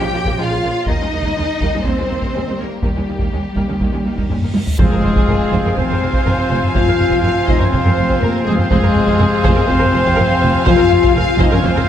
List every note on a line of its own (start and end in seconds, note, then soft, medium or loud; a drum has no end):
0.00 0.08 A#1 soft
0.00 0.83 F3 medium
0.00 0.05 F3 soft
0.00 0.06 G#3 medium
0.00 0.83 C#4 medium
0.00 0.06 D#4 medium
0.00 0.38 G4 medium
0.00 0.39 G5 medium
0.13 0.21 A#1 soft
0.13 0.18 C#3 soft
0.13 0.18 F3 soft
0.13 0.18 A#3 medium
0.13 0.18 F4 medium
0.25 0.33 A#1 medium
0.25 0.31 C#3 medium
0.25 0.31 F3 medium
0.25 0.31 A#3 medium
0.25 0.31 F4 medium
0.25 taiko medium
0.38 0.44 A#1 soft
0.38 0.43 C#3 medium
0.38 0.43 F3 soft
0.38 0.43 G#3 soft
0.38 0.43 D#4 soft
0.38 0.87 F4 medium
0.38 0.88 F5 medium
0.50 0.57 A#1 soft
0.50 0.55 C#3 soft
0.50 0.55 F3 soft
0.50 0.55 A#3 soft
0.50 0.55 F4 soft
0.63 0.70 A#1 medium
0.63 0.68 C#3 medium
0.63 0.68 F3 medium
0.63 0.68 A#3 medium
0.63 0.68 F4 medium
0.86 0.93 D#3 medium
0.86 4.50 G3 medium
0.86 0.92 G3 medium
0.86 4.50 A#3 medium
0.86 0.93 A#3 medium
0.86 0.93 D#4 medium
0.86 1.86 D#4 medium
0.86 1.84 D#5 medium
0.86 taiko medium
0.90 0.94 D#2 medium
1.01 1.07 D#2 soft
1.01 1.06 D#3 soft
1.01 1.05 G3 soft
1.01 1.06 G#3 soft
1.01 1.06 C#4 soft
1.12 1.19 D#2 soft
1.12 1.19 D#3 soft
1.12 1.18 G3 soft
1.12 1.17 A#3 soft
1.12 1.18 D#4 soft
1.23 1.31 D#2 medium
1.23 1.29 D#3 soft
1.23 1.30 G3 medium
1.23 1.29 A#3 medium
1.23 1.29 D#4 medium
1.23 taiko medium
1.36 1.43 D#2 soft
1.36 1.44 D#3 soft
1.36 1.43 G3 soft
1.36 1.42 G#3 soft
1.36 1.41 C#4 soft
1.61 1.68 D#2 medium
1.61 1.68 D#3 medium
1.61 1.67 G3 medium
1.61 1.66 A#3 soft
1.61 1.66 D#4 medium
1.61 taiko medium
1.73 1.80 D#2 soft
1.73 1.80 D#3 soft
1.73 1.80 G3 soft
1.73 1.78 G#3 soft
1.73 1.78 C#4 soft
1.84 1.92 D#2 medium
1.84 1.92 D#3 soft
1.84 1.92 G3 medium
1.84 1.90 A#3 medium
1.84 2.59 C4 medium
1.84 1.89 D#4 medium
1.84 2.59 C5 medium
1.84 taiko medium
1.97 2.04 D#2 soft
1.97 2.05 D#3 soft
1.97 2.02 G#3 soft
1.97 2.02 C#4 soft
2.01 2.05 G3 soft
2.09 2.16 D#2 soft
2.09 2.16 D#3 soft
2.09 2.16 G3 soft
2.09 2.14 A#3 soft
2.09 2.14 D#4 soft
2.21 2.28 D#2 medium
2.21 2.29 D#3 medium
2.21 2.29 G3 medium
2.21 2.26 A#3 soft
2.21 2.26 D#4 soft
2.21 taiko medium
2.34 2.40 D#2 soft
2.34 2.40 D#3 soft
2.34 2.41 G3 soft
2.34 2.39 G#3 soft
2.34 2.39 C#4 soft
2.46 2.53 D#2 soft
2.46 2.53 D#3 soft
2.46 2.54 G3 soft
2.46 2.51 A#3 soft
2.46 2.51 D#4 soft
2.59 2.64 D#2 medium
2.59 2.65 D#3 medium
2.59 2.65 G3 soft
2.59 2.64 A#3 soft
2.59 2.84 A#3 soft
2.59 2.64 D#4 soft
2.59 2.84 A#4 medium
2.82 2.89 D#2 soft
2.82 2.89 D#3 soft
2.82 4.27 G3 soft
2.82 2.89 G3 soft
2.82 2.88 A#3 medium
2.82 2.88 D#4 soft
2.82 4.27 G4 soft
2.82 taiko medium
2.82 reverse cymbal soft
2.95 3.01 D#2 soft
2.95 3.02 D#3 soft
2.95 3.02 G3 soft
2.95 3.01 G#3 soft
2.95 3.00 C#4 soft
3.07 3.13 D#2 soft
3.07 3.13 D#3 soft
3.07 3.12 G3 soft
3.07 3.12 A#3 soft
3.07 3.12 D#4 soft
3.19 3.25 D#2 medium
3.19 3.26 D#3 soft
3.19 3.26 G3 soft
3.19 3.25 A#3 soft
3.19 3.25 D#4 soft
3.19 taiko medium
3.32 3.38 D#2 soft
3.32 3.38 D#3 soft
3.32 3.38 G3 soft
3.32 3.37 G#3 soft
3.32 3.37 C#4 soft
3.56 3.62 D#2 soft
3.56 3.61 D#3 medium
3.56 3.61 G3 medium
3.56 3.61 A#3 soft
3.56 3.61 D#4 soft
3.56 taiko medium
3.68 3.75 D#2 soft
3.68 3.74 D#3 soft
3.68 3.73 G3 soft
3.68 3.73 G#3 soft
3.68 3.73 C#4 soft
3.80 3.87 D#2 soft
3.80 3.86 D#3 medium
3.80 3.86 G3 soft
3.80 3.86 A#3 soft
3.80 3.86 D#4 soft
3.80 taiko medium
3.92 4.00 D#2 soft
3.92 3.98 D#3 soft
3.92 3.98 G3 soft
3.92 3.97 G#3 soft
3.92 3.98 C#4 soft
4.05 4.12 D#2 soft
4.05 4.10 D#3 soft
4.05 4.10 G3 soft
4.05 4.11 A#3 soft
4.05 4.11 D#4 soft
4.16 4.24 D#2 soft
4.16 4.22 D#3 soft
4.16 4.22 G3 soft
4.16 4.23 A#3 soft
4.16 4.23 D#4 medium
4.16 taiko medium
4.30 4.36 D#2 soft
4.30 4.35 D#3 soft
4.30 4.35 G3 soft
4.30 4.35 G#3 soft
4.30 4.36 C#4 soft
4.30 taiko low-mid medium
4.42 4.48 D#2 soft
4.42 4.48 D#3 soft
4.42 4.48 G3 soft
4.42 4.48 A#3 soft
4.42 4.48 D#4 soft
4.42 taiko low-mid medium
4.54 4.60 D#2 soft
4.54 4.59 D#3 soft
4.54 4.59 G3 soft
4.54 4.60 A#3 soft
4.54 4.60 D#4 soft
4.54 taiko high medium
4.66 taiko low medium
4.78 4.84 F1 medium
4.78 4.83 F2 medium
4.78 8.68 C3 medium
4.78 8.67 F3 medium
4.78 5.73 G#3 medium
4.78 8.67 C4 medium
4.78 8.67 F4 medium
4.78 5.79 G#4 medium
4.78 5.73 G#4 medium
4.78 8.66 C5 medium
4.78 5.02 C5 medium
4.78 8.67 C5 medium
4.78 8.67 F5 medium
4.78 8.67 G#5 medium
4.78 taiko medium
4.78 impact medium
4.90 4.96 F2 medium
4.90 4.96 A#4 soft
4.90 taiko low-mid soft
5.03 5.10 F1 medium
5.03 5.08 F2 medium
5.03 5.08 C5 soft
5.03 taiko low-mid soft
5.14 5.20 F2 medium
5.14 5.21 C5 medium
5.14 taiko medium
5.26 5.33 F1 medium
5.26 5.31 F2 soft
5.26 5.33 A#4 soft
5.26 taiko low-mid soft
5.51 5.58 F1 medium
5.51 5.56 F2 medium
5.51 5.57 C5 medium
5.51 taiko medium
5.64 5.69 F2 medium
5.64 5.70 A#4 medium
5.64 taiko low-mid soft
5.77 5.82 F1 medium
5.77 5.82 F2 medium
5.77 6.75 C4 medium
5.77 5.82 C5 medium
5.77 6.75 C5 medium
5.77 6.78 C5 medium
5.77 taiko medium
5.89 5.94 F2 soft
5.89 5.96 A#4 medium
5.89 taiko low-mid soft
6.01 6.07 F1 medium
6.01 6.06 F2 medium
6.01 6.07 C5 soft
6.14 6.19 F2 medium
6.14 6.19 C5 medium
6.14 taiko medium
6.26 6.31 F1 soft
6.26 6.31 F2 medium
6.26 6.31 A#4 medium
6.26 taiko low-mid medium
6.38 6.44 F2 soft
6.38 6.43 C5 medium
6.50 6.56 F1 medium
6.50 6.56 F2 medium
6.50 6.55 C5 medium
6.63 taiko low-mid soft
6.74 6.81 F1 medium
6.74 6.80 F2 medium
6.74 7.22 F4 medium
6.74 6.80 C5 medium
6.74 7.23 F5 medium
6.74 7.24 F5 medium
6.74 taiko medium
6.87 6.92 F2 medium
6.87 6.93 A#4 soft
6.87 taiko low-mid soft
7.00 7.06 F1 medium
7.00 7.05 F2 medium
7.00 7.04 C5 medium
7.00 taiko low-mid soft
7.11 7.17 F2 medium
7.11 7.16 C5 medium
7.11 taiko medium
7.23 7.29 F1 medium
7.23 7.30 F2 soft
7.23 7.47 F4 medium
7.23 7.29 A#4 soft
7.23 7.48 F5 medium
7.23 7.51 F5 medium
7.23 taiko low-mid medium
7.47 7.53 F1 medium
7.47 7.53 F2 medium
7.47 7.60 D#4 medium
7.47 7.52 C5 medium
7.47 7.60 D#5 medium
7.47 7.61 D#5 medium
7.47 taiko medium
7.59 7.65 F2 medium
7.59 7.73 C#4 medium
7.59 7.65 A#4 medium
7.59 7.72 C#5 medium
7.59 taiko low-mid soft
7.63 7.75 C#5 medium
7.71 7.78 F1 medium
7.71 7.78 F2 medium
7.71 8.21 C4 medium
7.71 8.20 C5 medium
7.71 7.77 C5 medium
7.71 8.23 C5 medium
7.71 taiko medium
7.84 7.90 F2 medium
7.84 7.89 A#4 medium
7.84 taiko low-mid soft
7.96 8.03 F1 medium
7.96 8.02 F2 medium
7.96 8.01 C5 medium
8.10 8.14 F2 medium
8.10 8.15 C5 medium
8.10 taiko medium
8.20 8.27 F1 medium
8.20 8.27 F2 medium
8.20 8.45 A#3 medium
8.20 8.45 A#4 medium
8.20 8.47 A#4 medium
8.20 8.28 A#4 medium
8.20 taiko low-mid medium
8.35 8.40 F2 medium
8.35 8.40 C5 medium
8.45 8.52 F1 medium
8.45 8.51 F2 medium
8.45 8.58 G#3 medium
8.45 8.58 G#4 medium
8.45 8.60 G#4 medium
8.45 8.52 C5 medium
8.58 8.71 C4 medium
8.58 8.70 C5 medium
8.58 8.73 C5 medium
8.58 taiko low-mid medium
8.69 8.77 F1 medium
8.69 8.76 F2 medium
8.69 11.89 C3 medium
8.69 11.89 F3 medium
8.69 9.67 G#3 loud
8.69 11.89 C4 medium
8.69 11.89 F4 medium
8.69 9.67 G#4 medium
8.69 9.68 G#4 medium
8.69 11.89 C5 medium
8.69 8.76 C5 medium
8.69 11.89 F5 medium
8.69 11.89 G#5 medium
8.69 taiko medium
8.83 8.89 F2 medium
8.83 8.88 A#4 medium
8.83 taiko low-mid soft
8.96 9.01 F1 medium
8.96 9.01 F2 medium
8.96 9.02 C5 medium
8.96 taiko low-mid soft
9.07 9.12 F2 medium
9.07 9.12 C5 medium
9.07 taiko medium
9.19 9.26 F1 medium
9.19 9.25 F2 medium
9.19 9.24 A#4 medium
9.19 taiko low-mid medium
9.44 9.50 F1 medium
9.44 9.49 F2 medium
9.44 9.49 C5 medium
9.44 taiko medium
9.55 9.61 F2 medium
9.55 9.60 A#4 medium
9.55 taiko low-mid soft
9.68 9.74 F1 medium
9.68 9.73 F2 medium
9.68 10.66 C4 loud
9.68 10.66 C5 medium
9.68 9.73 C5 medium
9.68 10.40 C5 loud
9.68 taiko medium
9.79 9.87 F2 medium
9.79 9.84 A#4 medium
9.79 taiko low-mid medium
9.93 9.99 F1 medium
9.93 9.98 F2 medium
9.93 9.98 C5 medium
10.03 10.10 F2 medium
10.03 10.09 C5 loud
10.03 taiko medium
10.16 10.23 F1 medium
10.16 10.23 F2 medium
10.16 10.21 A#4 medium
10.16 taiko low-mid medium
10.28 10.35 F2 medium
10.28 10.33 C5 medium
10.40 10.48 F1 medium
10.40 10.48 F2 medium
10.40 10.45 C5 medium
10.55 taiko low-mid soft
10.65 10.72 F1 loud
10.65 10.73 F2 loud
10.65 11.15 F4 loud
10.65 10.70 C5 loud
10.65 11.15 F5 loud
10.65 taiko loud
10.77 10.84 F2 medium
10.77 10.82 A#4 medium
10.77 taiko low-mid medium
10.89 10.96 F1 medium
10.89 10.96 F2 medium
10.89 10.95 C5 medium
10.89 taiko low-mid medium
11.02 11.08 F2 medium
11.02 11.07 C5 medium
11.02 taiko medium
11.15 11.20 F1 medium
11.15 11.20 F2 medium
11.15 11.40 F4 loud
11.15 11.21 A#4 medium
11.15 11.40 F5 loud
11.15 11.43 F5 medium
11.15 taiko low-mid medium
11.39 11.44 F1 loud
11.39 11.44 F2 medium
11.39 11.52 D#4 loud
11.39 11.44 C5 loud
11.39 11.52 D#5 loud
11.39 11.55 D#5 medium
11.39 taiko medium
11.51 11.57 F2 medium
11.51 11.65 C#4 loud
11.51 11.56 A#4 medium
11.51 11.64 C#5 medium
11.51 11.65 C#5 medium
11.51 taiko low-mid medium
11.63 11.68 F1 medium
11.63 11.68 F2 loud
11.63 11.89 C4 loud
11.63 11.69 C5 loud
11.63 11.89 C5 medium
11.63 11.89 C5 loud
11.63 taiko loud
11.75 11.80 F2 medium
11.75 11.81 A#4 medium
11.75 taiko low-mid medium